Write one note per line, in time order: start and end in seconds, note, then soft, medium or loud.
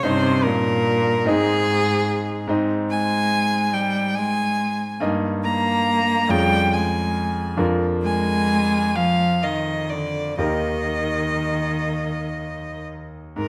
0.03 1.23 G2 medium
0.03 0.49 C3 loud
0.03 1.23 C#4 medium
0.03 1.23 D#4 medium
0.03 0.45 C5 loud
0.03 1.23 D#5 medium
0.44 1.31 A#2 loud
0.44 1.28 A#4 loud
1.25 2.45 G#2 medium
1.25 2.45 C4 medium
1.25 2.46 D#4 medium
1.25 2.49 G#4 loud
1.25 2.46 D#5 medium
1.30 2.51 G#2 loud
2.47 4.97 G#2 medium
2.47 4.98 C4 medium
2.47 4.98 D#4 medium
2.47 4.98 D#5 medium
2.91 3.75 G#3 loud
2.91 3.75 G#5 loud
3.73 4.20 G3 loud
3.73 4.16 G5 loud
4.15 5.03 G#3 medium
4.15 5.02 G#5 loud
5.00 6.26 G2 medium
5.00 6.27 A#3 medium
5.00 6.27 D#4 medium
5.00 6.27 D#5 medium
5.44 6.32 A#3 loud
5.44 6.32 A#5 loud
6.29 7.56 F2 medium
6.29 6.77 G3 loud
6.29 7.56 C#4 medium
6.29 7.56 F4 medium
6.29 7.57 G#4 medium
6.29 6.75 G5 loud
6.74 7.61 G#3 medium
6.74 7.60 G#5 medium
7.57 10.35 F2 medium
7.57 10.34 D4 medium
7.57 10.35 F4 medium
7.57 10.35 A#4 medium
8.03 8.97 G#3 loud
8.03 8.97 G#5 loud
8.95 9.45 F3 medium
8.95 9.45 F5 loud
9.43 9.93 D#3 medium
9.43 9.92 D#5 medium
9.90 10.39 D3 medium
9.90 10.38 D5 medium
10.38 13.32 D#2 medium
10.38 12.85 D#3 medium
10.38 13.32 D#4 soft
10.38 13.32 G4 medium
10.38 13.33 A#4 medium
10.38 12.85 D#5 medium
13.36 13.48 G#2 medium
13.36 13.48 A#4 medium